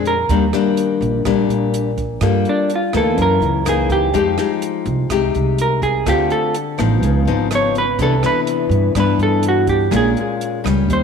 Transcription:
Already playing: F2 A#2 G#3 C4 D4
0.05 A#4, closed hi-hat
0.29 D#2 D#3 G3 A#3 D4, kick, closed hi-hat
0.53 G3 A#3 D4, cross-stick, closed hi-hat
0.77 closed hi-hat
1.01 A#1, closed hi-hat
1.25 A#1 A#2 G3 A#3 D4, kick, cross-stick, closed hi-hat
1.49 A#1, closed hi-hat
1.74 closed hi-hat
1.98 kick, closed hi-hat
2.21 G2 G3 A#3 F4 A4, kick, cross-stick, closed hi-hat
2.45 closed hi-hat
2.49 D4
2.70 closed hi-hat
2.76 F4
2.93 D2 E3 A#3 D#4 A4, cross-stick, closed hi-hat
3.17 F#2, kick, closed hi-hat
3.22 A#4
3.40 C#2, closed hi-hat
3.65 E3 A#3 D#4 G#4, cross-stick, closed hi-hat
3.90 G4, kick, closed hi-hat
4.13 F2 F3 G#3 D#4 G4, kick, closed hi-hat
4.38 G#3 D#4 G4, cross-stick, closed hi-hat
4.62 closed hi-hat
4.86 C2, closed hi-hat
5.09 C2 C3 G#3 D#4 G4, kick, cross-stick, closed hi-hat
5.34 C2, closed hi-hat
5.58 A#4, closed hi-hat
5.82 G#4, kick, closed hi-hat
6.06 D2 D3 A3 C4 F4 G4, kick, cross-stick, closed hi-hat
6.30 A4, closed hi-hat
6.55 closed hi-hat
6.78 A1 F3 B3 D#4, cross-stick, closed hi-hat
7.02 C#2 C#3, kick, closed hi-hat
7.25 G#1 F3 B3 D#4, closed hi-hat
7.51 F3 B3 D#4, cross-stick, closed hi-hat
7.55 C#5
7.75 B4, closed hi-hat
7.99 C2 C3 E3 B3 D4 A4, kick, closed hi-hat
8.23 E3 B3 D4 B4, cross-stick, closed hi-hat
8.47 closed hi-hat
8.69 G2, closed hi-hat
8.95 G2 E3 B3 D4, kick, cross-stick, closed hi-hat
9.00 B4
9.18 G2, closed hi-hat
9.23 A4
9.43 closed hi-hat
9.48 F#4
9.67 G4, kick, closed hi-hat
9.91 A#1 A#2 G#3 C#4 F4, kick, cross-stick, closed hi-hat
9.96 G#4
10.17 closed hi-hat
10.41 closed hi-hat
10.64 C#2 G3 C#4, cross-stick, closed hi-hat
10.88 D#2 D#3, kick, closed hi-hat
10.93 C5

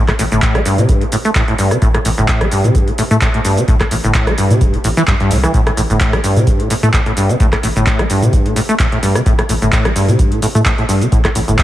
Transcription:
Already playing: A1
0.08 A2, kick, cross-stick, clap, closed hi-hat
0.19 A1 A2, open hi-hat, shaker
0.32 G1 A2, closed hi-hat, shaker
0.42 A2, kick, clap, closed hi-hat, shaker
0.55 A1 A3, cross-stick, closed hi-hat
0.66 G2, open hi-hat, shaker
0.78 A2 C3, closed hi-hat, shaker
0.89 G2, kick, closed hi-hat, shaker
1.01 A2, closed hi-hat
1.12 A2, open hi-hat, shaker
1.25 A3, closed hi-hat, shaker
1.35 A2, kick, clap, closed hi-hat, shaker
1.48 A2, closed hi-hat
1.59 G2, open hi-hat, shaker
1.71 C3, cross-stick, closed hi-hat, shaker
1.82 A1 A2, kick, closed hi-hat, shaker
1.94 A2, cross-stick, closed hi-hat
2.05 A1 A2, open hi-hat, shaker
2.18 G1 A2, closed hi-hat, shaker
2.28 kick, clap, closed hi-hat, shaker
2.41 A1 A3, cross-stick, closed hi-hat
2.52 G2, open hi-hat, shaker
2.64 A2 C3, closed hi-hat, shaker
2.75 G2, kick, closed hi-hat, shaker
2.88 A2, closed hi-hat
2.98 A2, open hi-hat, shaker
3.11 A2 A3, closed hi-hat, shaker
3.21 A2, kick, clap, closed hi-hat, shaker
3.34 A2, closed hi-hat
3.45 G2, open hi-hat, shaker
3.57 C3, closed hi-hat, shaker
3.68 A1 A2, kick, closed hi-hat, shaker
3.81 A2, kick, cross-stick, clap, closed hi-hat
3.91 A1 A2, open hi-hat, shaker
4.04 G1 A2, closed hi-hat, shaker
4.14 kick, clap, closed hi-hat, shaker
4.27 A1 A3, cross-stick, closed hi-hat
4.38 G2, open hi-hat, shaker
4.50 A2 C3, closed hi-hat, shaker
4.61 E1 G2, kick, closed hi-hat, shaker
4.74 A2, closed hi-hat
4.84 A1 A2, open hi-hat, shaker
4.97 E3, closed hi-hat, shaker
5.08 G2, kick, clap, closed hi-hat, shaker
5.20 G2, closed hi-hat
5.31 C2 A2, open hi-hat, shaker
5.43 E3, cross-stick, closed hi-hat, shaker
5.54 A1 A2, kick, closed hi-hat, shaker
5.67 A2, cross-stick, closed hi-hat
5.77 A1 A2, open hi-hat, shaker
5.90 G1 A2, closed hi-hat, shaker
6.01 kick, clap, closed hi-hat, shaker
6.13 A1 A3, cross-stick, closed hi-hat
6.24 G2, open hi-hat, shaker
6.36 A2 C3, closed hi-hat, shaker
6.47 G2, kick, closed hi-hat, shaker
6.60 A2, closed hi-hat
6.70 A2, open hi-hat, shaker
6.83 A2 A3, closed hi-hat, shaker
6.94 A2, kick, clap, closed hi-hat, shaker
7.06 A2, closed hi-hat
7.17 G2, open hi-hat, shaker
7.29 C3, closed hi-hat, shaker
7.40 A1 A2, kick, closed hi-hat, shaker
7.53 A2, kick, cross-stick, clap, closed hi-hat
7.63 A1 A2, open hi-hat, shaker
7.76 G1 A2, closed hi-hat, shaker
7.87 kick, clap, closed hi-hat, shaker
7.99 A1 A3, cross-stick, closed hi-hat
8.10 G2, open hi-hat, shaker
8.22 A2 C3, closed hi-hat, shaker
8.33 G2, kick, closed hi-hat, shaker
8.46 A2, closed hi-hat
8.56 A2, open hi-hat, shaker
8.69 A3, closed hi-hat, shaker
8.79 A2, kick, clap, closed hi-hat, shaker
8.92 A2, closed hi-hat
9.03 G2, open hi-hat, shaker
9.15 C3, cross-stick, closed hi-hat, shaker
9.26 A1 A2, kick, closed hi-hat, shaker
9.39 A2, cross-stick, closed hi-hat
9.49 A1 A2, open hi-hat, shaker
9.62 G1 A2, closed hi-hat, shaker
9.72 A2, kick, clap, closed hi-hat, shaker
9.85 A1 A3, cross-stick, closed hi-hat
9.96 G2, open hi-hat, shaker
10.08 A2 C3, closed hi-hat, shaker
10.19 G2, kick, closed hi-hat, shaker
10.32 A2, closed hi-hat
10.42 A2, open hi-hat, shaker
10.55 A2 A3, closed hi-hat, shaker
10.66 A2, kick, clap, closed hi-hat, shaker
10.78 A2, closed hi-hat
10.89 G2, open hi-hat, shaker
11.01 C3, closed hi-hat, shaker
11.12 A1 A2, kick, closed hi-hat, shaker
11.25 A2, kick, cross-stick, clap, closed hi-hat
11.35 A1 A2, open hi-hat, shaker
11.48 G1 A2, closed hi-hat, shaker
11.59 A2, kick, clap, closed hi-hat, shaker

